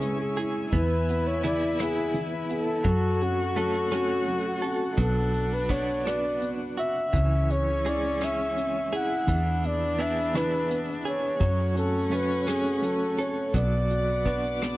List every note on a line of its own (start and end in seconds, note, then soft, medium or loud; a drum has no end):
0.00 0.69 C#2 medium
0.00 0.75 C#3 medium
0.00 0.02 G#3 soft
0.00 0.73 G#3 medium
0.00 0.71 G#3 soft
0.00 0.72 C#4 medium
0.00 0.74 C#4 medium
0.00 0.37 E4 soft
0.00 0.79 E4 medium
0.00 0.20 G#4 medium
0.00 0.36 G#4 medium
0.00 0.71 C#5 medium
0.00 2.81 E5 medium
0.00 2.81 G#5 medium
0.00 0.71 C#6 medium
0.00 closed hi-hat medium
0.20 0.37 G#4 medium
0.37 0.72 E4 medium
0.37 0.80 G#4 medium
0.37 0.75 G#4 medium
0.37 closed hi-hat soft
0.72 2.81 E2 medium
0.72 1.43 E3 medium
0.72 1.42 B3 medium
0.72 2.87 E4 loud
0.72 2.83 B4 medium
0.72 1.28 B4 medium
0.72 2.83 B5 medium
0.72 kick medium
0.72 closed hi-hat medium
1.09 1.80 B3 soft
1.09 closed hi-hat medium
1.27 1.44 C#5 medium
1.44 2.13 E3 soft
1.44 2.92 B3 medium
1.44 1.78 E4 medium
1.44 2.50 G#4 medium
1.44 1.83 D5 medium
1.44 closed hi-hat soft
1.79 2.49 B3 medium
1.79 2.92 E4 medium
1.79 2.24 G#4 medium
1.79 cross-stick medium
1.79 closed hi-hat medium
2.14 2.83 E3 medium
2.14 closed hi-hat medium
2.50 2.84 B3 soft
2.50 3.24 A4 medium
2.50 closed hi-hat soft
2.84 4.94 F#2 medium
2.84 4.96 F#3 medium
2.84 3.55 F#3 medium
2.84 4.98 F#4 loud
2.84 4.96 A4 medium
2.84 4.96 C#5 medium
2.84 7.09 F#5 medium
2.84 4.96 C#6 medium
2.84 kick medium
2.84 closed hi-hat medium
3.21 3.90 C#4 soft
3.21 3.60 F#4 medium
3.21 closed hi-hat soft
3.56 4.26 F#3 soft
3.56 5.05 A3 medium
3.56 3.90 C#4 medium
3.56 4.61 A4 medium
3.56 3.96 A4 medium
3.56 closed hi-hat soft
3.91 5.05 C#4 medium
3.91 4.61 C#4 medium
3.91 4.46 F#4 medium
3.91 cross-stick medium
3.91 closed hi-hat medium
4.27 4.96 F#3 medium
4.27 closed hi-hat soft
4.48 4.63 F#4 medium
4.62 4.97 C#4 soft
4.62 5.05 A4 medium
4.62 closed hi-hat soft
4.66 4.97 F#4 medium
4.96 7.09 B1 medium
4.96 7.13 F#3 medium
4.96 5.68 B3 medium
4.96 6.76 D4 medium
4.96 7.11 D4 medium
4.96 7.11 B4 medium
4.96 kick medium
4.96 closed hi-hat medium
5.01 5.55 A4 medium
5.33 6.03 F#4 soft
5.33 closed hi-hat soft
5.53 5.73 B4 medium
5.69 7.20 B3 medium
5.69 6.40 B3 soft
5.69 6.04 D4 medium
5.69 6.76 F#4 medium
5.69 6.09 C#5 medium
5.69 kick medium
5.69 closed hi-hat soft
6.05 7.20 D4 medium
6.05 6.77 F#4 medium
6.05 6.51 D5 medium
6.05 cross-stick medium
6.05 closed hi-hat medium
6.41 7.11 B3 soft
6.41 closed hi-hat soft
6.77 7.20 F#4 soft
6.77 7.13 F#4 medium
6.77 7.53 E5 medium
6.77 closed hi-hat soft
7.12 9.24 C#2 medium
7.12 9.25 C#3 medium
7.12 9.27 E3 medium
7.12 8.94 C#4 loud
7.12 11.36 G#4 medium
7.12 11.37 E5 medium
7.12 9.26 C#6 medium
7.12 kick medium
7.12 closed hi-hat medium
7.49 8.19 G#4 soft
7.49 7.89 C#5 medium
7.49 closed hi-hat soft
7.85 9.35 G#3 medium
7.85 9.24 E4 soft
7.85 8.91 G#4 medium
7.85 8.26 D5 medium
7.85 closed hi-hat soft
8.21 9.35 C#4 medium
8.21 8.91 G#4 medium
8.21 8.94 E5 medium
8.21 cross-stick medium
8.21 closed hi-hat medium
8.56 9.26 C#4 soft
8.56 closed hi-hat soft
8.92 9.30 E4 medium
8.92 9.27 G#4 medium
8.92 9.35 G#4 medium
8.92 9.68 F#5 medium
8.92 closed hi-hat medium
9.27 11.37 E2 medium
9.27 10.33 E3 medium
9.27 11.40 E3 medium
9.27 11.39 D4 medium
9.27 11.38 B4 medium
9.27 11.38 B5 medium
9.27 kick medium
9.27 closed hi-hat medium
9.63 10.69 B3 soft
9.63 10.03 D5 medium
9.63 closed hi-hat soft
9.98 11.48 B3 medium
9.98 10.34 E4 medium
9.98 11.04 G#4 soft
9.98 11.04 G#4 medium
9.98 10.38 E5 medium
9.98 closed hi-hat soft
10.34 11.37 E3 medium
10.34 11.48 E4 medium
10.34 10.79 B4 medium
10.34 cross-stick medium
10.34 closed hi-hat medium
10.70 11.39 B3 medium
10.70 closed hi-hat soft
11.05 11.39 G#4 medium
11.05 11.48 G#4 medium
11.05 11.73 C#5 medium
11.05 closed hi-hat soft
11.40 13.50 F#2 medium
11.40 12.08 F#3 medium
11.40 13.54 F#3 medium
11.40 13.52 A3 medium
11.40 13.49 C#4 loud
11.40 13.52 C#5 medium
11.40 13.52 F#5 medium
11.40 13.52 C#6 medium
11.40 kick medium
11.40 closed hi-hat medium
11.74 12.45 C#4 medium
11.74 12.15 A4 medium
11.74 closed hi-hat medium
12.10 12.81 F#3 soft
12.10 13.61 A3 medium
12.10 12.46 C#4 medium
12.10 12.49 B4 medium
12.10 closed hi-hat soft
12.47 13.17 C#4 medium
12.47 13.61 C#4 medium
12.47 12.86 G#4 medium
12.47 cross-stick medium
12.47 closed hi-hat medium
12.82 13.51 F#3 soft
12.82 13.21 A4 medium
12.82 closed hi-hat soft
13.18 13.53 C#4 soft
13.18 13.61 A4 medium
13.18 13.55 C#5 medium
13.18 closed hi-hat soft
13.53 14.77 B1 medium
13.53 14.77 F#3 medium
13.53 14.77 B3 medium
13.53 14.62 B3 medium
13.53 14.77 B4 medium
13.53 14.77 D5 medium
13.53 14.77 D5 loud
13.53 14.77 F#5 medium
13.53 14.77 D6 medium
13.53 kick medium
13.53 closed hi-hat medium
13.90 14.77 F#4 soft
13.90 closed hi-hat medium
14.26 14.77 B3 medium
14.26 14.60 D4 medium
14.26 14.77 F#4 medium
14.26 14.77 B4 medium
14.26 kick medium
14.26 closed hi-hat soft
14.62 14.77 B3 medium
14.62 14.77 D4 medium
14.62 cross-stick medium
14.62 closed hi-hat medium